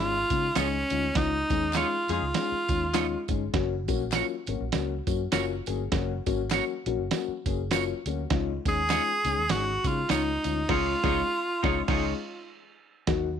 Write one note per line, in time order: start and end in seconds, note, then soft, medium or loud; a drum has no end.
0.00 0.23 G#1 loud
0.00 0.14 G#3 medium
0.00 0.14 C#4 medium
0.00 0.14 D#4 medium
0.00 0.59 F4 loud
0.00 0.14 G#4 medium
0.30 0.49 C#3 loud
0.30 0.43 G#3 medium
0.30 0.43 C#4 medium
0.30 0.43 D#4 medium
0.30 0.43 F4 medium
0.30 kick medium
0.30 closed hi-hat medium
0.30 tambourine medium
0.55 0.82 C#2 loud
0.55 0.73 G#3 medium
0.55 0.73 C#4 medium
0.55 1.19 C#4 medium
0.55 0.67 D#4 medium
0.55 0.73 D#4 medium
0.55 0.67 F4 loud
0.55 0.73 G#4 loud
0.55 0.67 C#5 medium
0.55 snare loud
0.55 clap medium
0.55 closed hi-hat medium
0.55 tambourine medium
0.90 1.10 D2 medium
0.90 1.03 G#3 medium
0.90 1.03 C#4 medium
0.90 1.03 D#4 medium
0.90 1.03 F4 medium
0.90 closed hi-hat medium
0.90 tambourine soft
1.15 1.42 C#2 loud
1.15 1.33 G#3 medium
1.15 1.33 C#4 medium
1.15 1.33 D#4 medium
1.15 1.78 D#4 loud
1.15 1.33 F4 loud
1.15 kick loud
1.15 snare loud
1.15 closed hi-hat medium
1.15 tambourine soft
1.50 1.82 D#2 medium
1.50 1.63 G#3 medium
1.50 1.63 C#4 medium
1.50 1.63 D#4 medium
1.50 1.63 G#4 loud
1.50 kick medium
1.50 closed hi-hat medium
1.50 tambourine medium
1.73 1.92 G#3 medium
1.73 1.93 C#4 medium
1.73 1.89 D#4 medium
1.73 1.86 D#4 medium
1.73 1.93 D#4 medium
1.73 1.90 F4 medium
1.73 1.87 F4 medium
1.73 2.10 F4 medium
1.73 1.89 G#4 medium
1.73 1.93 G#4 medium
1.73 1.87 C#5 medium
1.73 snare medium
1.73 clap medium
1.73 closed hi-hat medium
1.73 tambourine medium
2.08 2.19 F2 medium
2.08 2.22 G#3 medium
2.08 2.22 C#4 medium
2.08 2.22 D#4 medium
2.08 2.26 D#4 medium
2.08 2.25 F4 medium
2.08 2.25 G#4 medium
2.08 2.22 G#4 medium
2.08 closed hi-hat medium
2.08 tambourine soft
2.13 3.26 F4 medium
2.22 2.31 C#2 medium
2.34 2.52 G#3 medium
2.34 2.52 C#4 medium
2.34 2.53 D#4 medium
2.34 2.53 G#4 medium
2.34 snare loud
2.34 closed hi-hat loud
2.34 tambourine medium
2.52 muted fingered electric bass stroke soft
2.68 3.15 D#2 medium
2.68 2.82 G#3 medium
2.68 2.82 C#4 medium
2.68 2.82 D#4 medium
2.68 2.82 F4 medium
2.68 kick medium
2.68 closed hi-hat medium
2.68 tambourine soft
2.94 3.12 G#3 loud
2.94 3.12 C#4 medium
2.94 3.12 D#4 loud
2.94 3.05 D#4 medium
2.94 3.12 F4 loud
2.94 3.06 F4 medium
2.94 3.06 C#5 medium
2.94 snare loud
2.94 clap medium
2.94 closed hi-hat medium
2.94 tambourine loud
3.28 3.48 G1 medium
3.28 3.42 G#3 medium
3.28 3.41 C#4 medium
3.28 3.42 D#4 medium
3.28 3.42 G#4 medium
3.28 kick medium
3.28 closed hi-hat medium
3.28 tambourine soft
3.53 3.89 F#1 loud
3.53 3.71 F#3 loud
3.53 3.71 A#3 medium
3.53 3.72 C#4 medium
3.53 3.72 F#4 loud
3.53 kick loud
3.53 snare loud
3.53 closed hi-hat medium
3.88 4.21 A#1 medium
3.88 4.01 F#3 loud
3.88 4.01 A#3 loud
3.88 4.01 C#4 medium
3.88 4.01 F#4 loud
3.88 kick medium
3.88 closed hi-hat medium
3.88 tambourine medium
4.12 4.31 F#3 medium
4.12 4.31 A#3 medium
4.12 4.31 C#4 medium
4.12 4.31 F4 medium
4.12 4.25 F#4 medium
4.12 4.25 A#4 medium
4.12 4.26 C#5 medium
4.12 snare loud
4.12 clap medium
4.12 closed hi-hat medium
4.12 tambourine medium
4.46 4.57 G#1 medium
4.46 4.61 F#3 medium
4.46 4.61 A#3 medium
4.46 4.61 C#4 medium
4.46 4.61 F#4 medium
4.46 closed hi-hat medium
4.46 tambourine soft
4.60 4.70 A#1 medium
4.72 5.00 C#2 medium
4.72 4.90 F#3 medium
4.72 4.91 A#3 medium
4.72 4.91 C#4 medium
4.72 4.91 F#4 medium
4.72 snare loud
4.72 closed hi-hat medium
4.72 tambourine medium
5.07 5.26 F#2 medium
5.07 5.20 F#3 medium
5.07 5.20 A#3 medium
5.07 5.20 C#4 medium
5.07 5.20 F#4 medium
5.07 kick medium
5.07 closed hi-hat medium
5.07 tambourine medium
5.32 5.59 F#1 medium
5.32 5.50 F#3 loud
5.32 5.50 A#3 loud
5.32 5.50 C#4 loud
5.32 5.50 F4 loud
5.32 5.43 F#4 medium
5.32 5.44 A#4 loud
5.32 5.44 C#5 medium
5.32 snare loud
5.32 clap loud
5.32 closed hi-hat loud
5.32 tambourine medium
5.66 5.86 G1 medium
5.66 5.80 F#3 medium
5.66 5.80 A#3 medium
5.66 5.80 C#4 medium
5.66 5.80 G#4 loud
5.66 closed hi-hat medium
5.66 tambourine soft
5.92 6.19 F#1 loud
5.92 6.10 F#3 loud
5.92 6.10 A#3 medium
5.92 6.10 C#4 medium
5.92 6.10 F#4 loud
5.92 kick loud
5.92 snare loud
5.92 closed hi-hat medium
5.92 tambourine soft
6.26 6.59 G#1 medium
6.26 6.39 F#3 loud
6.26 6.39 A#3 medium
6.26 6.40 C#4 loud
6.26 6.40 F#4 loud
6.26 kick medium
6.26 closed hi-hat medium
6.26 tambourine medium
6.51 6.70 F#3 medium
6.51 6.70 A#3 medium
6.51 6.70 C#4 medium
6.51 6.63 F#4 medium
6.51 6.70 F#4 medium
6.51 6.64 A#4 medium
6.51 6.64 C#5 medium
6.51 snare loud
6.51 clap medium
6.51 closed hi-hat medium
6.51 tambourine medium
6.86 6.96 A#1 medium
6.86 6.99 F#3 medium
6.86 7.00 A#3 medium
6.86 7.00 C#4 medium
6.86 7.00 F#4 loud
6.86 closed hi-hat medium
6.98 7.08 F#1 medium
7.11 7.30 F#3 medium
7.11 7.29 A#3 medium
7.11 7.30 C#4 medium
7.11 7.29 F#4 loud
7.11 snare loud
7.11 closed hi-hat loud
7.11 tambourine medium
7.28 muted fingered electric bass stroke soft
7.46 7.92 F#1 medium
7.46 7.59 F#3 medium
7.46 7.59 A#3 medium
7.46 7.59 C#4 medium
7.46 7.59 G#4 medium
7.46 kick medium
7.46 closed hi-hat medium
7.46 tambourine medium
7.71 7.89 F#3 loud
7.71 7.89 A#3 loud
7.71 7.89 C#4 loud
7.71 7.89 F4 loud
7.71 7.82 F#4 medium
7.71 7.83 A#4 medium
7.71 7.83 C#5 medium
7.71 snare loud
7.71 clap loud
7.71 closed hi-hat medium
7.71 tambourine loud
8.06 8.25 D2 medium
8.06 8.19 F#3 medium
8.06 8.19 A#3 medium
8.06 8.19 C#4 medium
8.06 8.19 F#4 medium
8.06 closed hi-hat medium
8.06 tambourine soft
8.30 8.57 C#2 loud
8.30 8.49 G#3 loud
8.30 8.49 C#4 loud
8.30 8.49 D#4 loud
8.30 8.49 F4 loud
8.30 kick loud
8.30 snare loud
8.30 closed hi-hat medium
8.65 8.98 D#2 medium
8.65 8.78 G#3 medium
8.65 8.78 C#4 medium
8.65 8.78 D#4 medium
8.65 8.78 G#4 loud
8.65 9.53 G#4 loud
8.65 kick medium
8.65 closed hi-hat medium
8.65 tambourine medium
8.90 9.08 G#3 medium
8.90 9.08 C#4 medium
8.90 9.01 D#4 medium
8.90 9.08 D#4 medium
8.90 9.08 F4 medium
8.90 9.02 F4 medium
8.90 9.02 C#5 medium
8.90 snare loud
8.90 clap medium
8.90 closed hi-hat medium
8.90 tambourine medium
9.24 9.34 C#2 medium
9.24 9.38 G#3 medium
9.24 9.38 C#4 medium
9.24 9.38 D#4 medium
9.24 9.38 G#4 medium
9.24 closed hi-hat medium
9.24 tambourine soft
9.38 9.47 D#2 medium
9.49 9.77 G#1 loud
9.49 9.68 G#3 medium
9.49 9.68 C#4 medium
9.49 9.68 D#4 medium
9.49 9.89 F#4 medium
9.49 9.68 G#4 medium
9.49 snare loud
9.49 closed hi-hat loud
9.49 tambourine medium
9.84 10.03 C#3 medium
9.84 9.97 G#3 medium
9.84 9.98 C#4 medium
9.84 9.97 D#4 medium
9.84 10.10 F4 medium
9.84 9.98 G#4 medium
9.84 kick medium
9.84 closed hi-hat medium
9.84 tambourine medium
10.09 10.36 C#2 medium
10.09 10.28 G#3 medium
10.09 10.28 C#4 medium
10.09 10.20 D#4 medium
10.09 10.28 D#4 medium
10.09 10.72 D#4 medium
10.09 10.21 F4 medium
10.09 10.28 F4 loud
10.09 10.21 C#5 medium
10.09 snare loud
10.09 clap medium
10.09 closed hi-hat medium
10.09 tambourine medium
10.44 10.64 D2 medium
10.44 10.57 G#3 medium
10.44 10.57 C#4 medium
10.44 10.57 D#4 medium
10.44 10.57 F4 medium
10.44 closed hi-hat medium
10.44 tambourine soft
10.69 10.93 C#2 loud
10.69 10.93 G#3 loud
10.69 10.93 C#4 medium
10.69 10.93 D#4 medium
10.69 10.87 D#4 medium
10.69 10.93 D#4 medium
10.69 10.87 F4 medium
10.69 10.93 F4 medium
10.69 12.48 F4 loud
10.69 10.87 G#4 medium
10.69 10.94 C#5 medium
10.69 kick loud
10.69 snare loud
10.69 crash medium
11.04 11.21 C#2 medium
11.04 11.21 G#3 medium
11.04 11.21 C#4 medium
11.04 11.16 D#4 loud
11.04 11.21 D#4 loud
11.04 11.21 D#4 medium
11.04 11.16 F4 medium
11.04 11.21 F4 medium
11.04 11.16 G#4 loud
11.04 11.21 G#4 medium
11.04 11.21 C#5 medium
11.04 kick loud
11.04 snare loud
11.63 11.80 C#2 medium
11.63 11.80 G#3 medium
11.63 11.80 C#4 loud
11.63 11.80 D#4 medium
11.63 11.76 D#4 medium
11.63 11.80 D#4 loud
11.63 11.76 F4 medium
11.63 11.80 F4 medium
11.63 11.80 F4 loud
11.63 11.76 G#4 medium
11.63 11.81 C#5 medium
11.63 kick loud
11.63 snare medium
11.88 12.12 C#2 loud
11.88 12.12 G#3 loud
11.88 12.12 C#4 medium
11.88 12.06 D#4 medium
11.88 12.12 D#4 loud
11.88 12.12 D#4 medium
11.88 12.06 F4 medium
11.88 12.12 F4 medium
11.88 12.06 G#4 medium
11.88 12.12 G#4 loud
11.88 12.13 C#5 medium
11.88 kick loud
11.88 snare loud
11.88 crash medium
13.07 13.40 D#2 loud
13.07 13.26 F#3 loud
13.07 13.26 A#3 loud
13.07 13.26 D#4 medium
13.07 13.26 F#4 loud
13.07 kick loud
13.07 snare loud
13.07 closed hi-hat medium